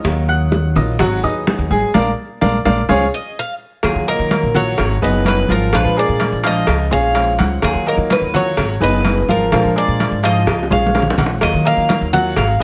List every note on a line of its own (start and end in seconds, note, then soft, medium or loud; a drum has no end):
0.00 0.74 D#3 medium
0.00 0.20 D#4 medium
0.00 0.20 D#5 medium
0.00 0.20 D#6 medium
0.04 0.72 D#2 loud
0.04 0.75 F#3 medium
0.04 0.75 A#3 medium
0.04 high bongo medium
0.04 high conga soft
0.28 0.67 F#5 medium
0.28 0.68 F#6 medium
0.28 high bongo soft
0.28 high conga soft
0.52 high bongo medium
0.52 high conga medium
0.75 0.98 A#1 loud
0.75 0.98 F#3 medium
0.75 0.99 A#3 medium
0.75 0.95 D#4 medium
0.75 0.99 F4 medium
0.75 0.95 D#5 medium
0.75 0.96 D#6 medium
0.75 high bongo soft
0.75 high conga soft
0.75 low conga medium
0.99 1.22 G#1 loud
0.99 1.19 F#3 medium
0.99 1.19 F#4 loud
0.99 1.19 F#5 medium
0.99 muted nylon-string guitar stroke medium
0.99 high bongo medium
0.99 high conga soft
0.99 low conga medium
1.23 1.57 D#2 medium
1.23 1.46 F#3 medium
1.23 1.46 B3 medium
1.23 1.62 D#4 medium
1.23 1.46 D#4 medium
1.23 1.46 G#4 medium
1.23 1.62 D#5 medium
1.23 1.62 D#6 medium
1.23 high bongo soft
1.23 high conga soft
1.47 1.93 F#3 medium
1.47 1.93 B3 medium
1.47 1.94 D#4 medium
1.47 1.94 G#4 medium
1.47 high bongo medium
1.47 low bongo medium
1.47 high conga medium
1.58 1.70 D#2 loud
1.70 1.82 A1 medium
1.70 1.90 G#3 medium
1.70 1.90 G#4 medium
1.70 1.90 G#5 medium
1.70 high conga medium
1.94 2.12 A#1 medium
1.94 2.09 G#3 loud
1.94 2.10 A#3 loud
1.94 2.09 D4 loud
1.94 2.09 A#4 loud
1.94 2.09 D5 loud
1.94 2.09 F5 loud
1.94 low bongo loud
1.94 high conga loud
2.41 2.59 A#1 loud
2.41 2.57 G#3 loud
2.41 2.57 A#3 loud
2.41 2.57 D4 loud
2.41 2.57 A#4 loud
2.41 2.57 D5 loud
2.41 2.57 F5 medium
2.41 low bongo loud
2.41 high conga loud
2.65 2.83 A#1 loud
2.65 2.80 G#3 loud
2.65 2.80 A#3 loud
2.65 2.81 D4 loud
2.65 2.80 A#4 medium
2.65 2.80 D5 medium
2.65 2.81 F5 loud
2.65 low bongo loud
2.65 high conga loud
2.89 3.07 C#2 loud
2.89 3.04 F3 medium
2.89 3.04 G#3 medium
2.89 3.04 C#4 loud
2.89 3.04 G#4 loud
2.89 3.04 C#5 loud
2.89 3.04 F5 loud
2.89 low bongo loud
2.89 high conga medium
3.14 3.36 D#5 medium
3.39 3.53 F5 loud
3.83 3.94 D#2 loud
3.83 4.54 D#3 medium
3.83 4.54 F#3 medium
3.83 4.54 A#3 medium
3.83 4.53 F4 medium
3.83 4.08 G#4 medium
3.83 cowbell loud
3.83 high conga soft
3.95 4.18 D#3 medium
4.07 4.46 A#3 medium
4.07 4.47 A#4 medium
4.07 4.57 A#4 loud
4.07 4.47 D#5 medium
4.07 high conga soft
4.19 4.42 D#3 loud
4.31 cowbell medium
4.31 high conga loud
4.43 4.77 A#1 medium
4.54 4.94 F#3 medium
4.54 4.77 F#3 medium
4.54 4.78 A#3 medium
4.54 4.77 F4 medium
4.54 4.94 F#4 medium
4.54 5.00 C#5 medium
4.54 4.94 F#5 medium
4.54 high conga soft
4.54 low conga medium
4.78 5.01 G#1 loud
4.78 muted nylon-string guitar stroke medium
4.78 cowbell loud
4.78 high conga soft
4.78 low conga medium
5.02 5.47 F#1 medium
5.02 5.24 F#3 medium
5.02 5.41 B3 medium
5.02 5.25 B3 medium
5.02 5.25 D#4 medium
5.02 5.25 G#4 medium
5.02 5.41 B4 medium
5.02 5.25 B4 medium
5.02 5.41 D#5 medium
5.02 high conga soft
5.25 5.72 F#3 medium
5.25 5.72 B3 medium
5.25 5.72 D#4 medium
5.25 5.73 G#4 medium
5.25 5.51 B4 medium
5.25 cowbell medium
5.25 high conga medium
5.48 5.72 G#1 medium
5.48 5.69 F3 medium
5.48 5.69 F4 medium
5.48 5.75 A#4 medium
5.48 5.69 F5 medium
5.48 high conga medium
5.72 5.84 A#1 loud
5.72 6.43 F3 medium
5.72 5.92 F3 medium
5.72 6.43 G#3 medium
5.72 6.43 D4 medium
5.72 5.92 F4 medium
5.72 6.43 F4 medium
5.72 5.98 B4 loud
5.72 5.93 F5 medium
5.72 cowbell loud
5.72 high conga soft
5.85 6.07 A#2 medium
5.96 6.35 G#3 medium
5.96 6.36 G#4 medium
5.96 6.36 A#4 medium
5.96 6.46 D5 loud
5.96 high conga soft
6.09 6.31 A#2 medium
6.20 cowbell medium
6.20 high conga medium
6.32 6.66 A#1 medium
6.43 6.83 F3 medium
6.43 6.67 G#3 medium
6.43 6.67 D4 medium
6.43 6.83 F4 medium
6.43 6.67 F4 medium
6.43 6.92 D#5 loud
6.43 6.83 F5 medium
6.43 cowbell medium
6.43 high conga soft
6.67 6.90 C#2 loud
6.67 muted nylon-string guitar stroke medium
6.67 cowbell loud
6.67 high conga soft
6.91 7.37 A#1 medium
6.91 7.13 F3 medium
6.91 7.30 G#3 medium
6.91 7.14 G#3 medium
6.91 7.14 C#4 medium
6.91 7.14 F4 medium
6.91 7.30 G#4 medium
6.91 7.30 C#5 medium
6.91 7.36 F5 loud
6.91 high conga soft
7.14 7.61 F3 medium
7.14 7.61 G#3 medium
7.14 7.62 C#4 medium
7.14 7.62 F4 medium
7.14 cowbell medium
7.14 high conga soft
7.39 7.62 C#2 medium
7.39 7.78 F#5 medium
7.39 cowbell medium
7.39 high conga medium
7.62 7.74 D#2 loud
7.62 8.33 D#3 medium
7.62 8.33 F#3 medium
7.62 8.33 A#3 medium
7.62 8.32 F4 medium
7.62 7.88 G#4 loud
7.62 cowbell loud
7.75 7.97 D#3 medium
7.86 8.25 A#3 medium
7.86 8.25 A#4 medium
7.86 7.94 A#4 medium
7.86 8.25 D#5 medium
7.86 high conga soft
7.97 8.20 D#3 loud
8.10 8.36 B4 medium
8.10 cowbell medium
8.10 high conga medium
8.21 8.55 D#2 medium
8.33 8.73 F#3 medium
8.33 8.56 F#3 medium
8.33 8.57 A#3 medium
8.33 8.56 F4 medium
8.33 8.73 F#4 medium
8.33 8.84 C#5 loud
8.33 8.73 F#5 medium
8.33 high conga soft
8.33 low conga medium
8.57 8.80 G#1 loud
8.57 muted nylon-string guitar stroke medium
8.57 cowbell loud
8.57 high conga soft
8.57 low conga medium
8.80 9.26 F#1 medium
8.80 9.03 F#3 medium
8.80 9.20 B3 medium
8.80 9.04 B3 medium
8.80 9.04 D#4 medium
8.80 9.04 G#4 medium
8.80 9.20 B4 medium
8.80 9.30 B4 loud
8.80 9.20 D#5 medium
8.80 high conga soft
9.04 9.51 F#3 medium
9.04 9.51 B3 medium
9.04 9.51 D#4 medium
9.04 9.52 G#4 medium
9.04 cowbell medium
9.04 high conga medium
9.28 9.51 G#1 medium
9.28 9.48 F3 medium
9.28 9.48 F4 medium
9.28 9.74 A#4 medium
9.28 9.48 F5 medium
9.28 high conga medium
9.52 9.63 A#1 loud
9.52 10.22 F3 medium
9.52 9.72 F3 medium
9.52 10.23 G#3 medium
9.52 10.22 D4 medium
9.52 9.72 F4 medium
9.52 10.22 F4 medium
9.52 9.72 F5 medium
9.52 cowbell loud
9.52 high conga soft
9.64 9.87 A#2 medium
9.76 10.15 G#3 medium
9.76 10.15 G#4 medium
9.76 10.15 A#4 medium
9.76 10.21 D5 loud
9.76 high conga soft
9.88 10.10 A#2 loud
10.00 cowbell medium
10.00 high conga medium
10.11 10.45 G#2 medium
10.23 10.62 F3 medium
10.23 10.46 G#3 medium
10.23 10.46 D4 medium
10.23 10.46 F4 medium
10.23 10.62 F4 medium
10.23 10.68 D#5 loud
10.23 10.62 F5 medium
10.23 cowbell medium
10.23 high conga soft
10.46 10.69 C#2 medium
10.46 muted nylon-string guitar stroke medium
10.46 cowbell loud
10.46 high bongo medium
10.46 high conga soft
10.63 high bongo medium
10.70 11.16 A#1 medium
10.70 10.93 F3 medium
10.70 11.09 G#3 medium
10.70 10.94 G#3 medium
10.70 10.93 C#4 medium
10.70 10.93 F4 medium
10.70 11.10 G#4 medium
10.70 11.10 C#5 medium
10.70 11.15 F5 loud
10.70 high conga loud
10.87 high conga medium
10.94 11.41 F3 medium
10.94 11.41 G#3 medium
10.94 11.41 C#4 medium
10.94 11.42 F4 medium
10.94 cowbell medium
10.94 low bongo medium
11.02 low conga medium
11.10 low bongo loud
11.18 11.40 A#1 medium
11.18 11.57 F#5 medium
11.18 cowbell medium
11.18 low conga loud
11.26 low bongo loud
11.41 11.53 D#2 medium
11.41 12.12 D#3 medium
11.41 12.12 F#3 medium
11.41 12.12 A#3 medium
11.41 12.12 F4 medium
11.41 11.66 D#5 loud
11.41 cowbell loud
11.41 high conga soft
11.54 11.76 D#3 medium
11.65 12.04 A#3 medium
11.65 12.04 A#4 medium
11.65 12.04 D#5 medium
11.65 12.13 F5 loud
11.65 high conga soft
11.77 12.00 D#3 medium
11.89 cowbell medium
11.89 high conga loud
12.01 12.35 D#2 medium
12.13 12.52 F#3 medium
12.13 12.36 F#3 medium
12.13 12.36 A#3 medium
12.13 12.36 F4 medium
12.13 12.52 F#4 medium
12.13 12.35 F#5 loud
12.13 12.52 F#5 medium
12.13 high conga soft
12.13 low conga medium
12.36 12.59 G#1 loud
12.36 12.59 F5 medium
12.36 muted nylon-string guitar stroke medium
12.36 cowbell loud
12.36 high conga soft
12.36 low conga medium
12.60 12.63 B3 medium
12.60 12.63 G#4 medium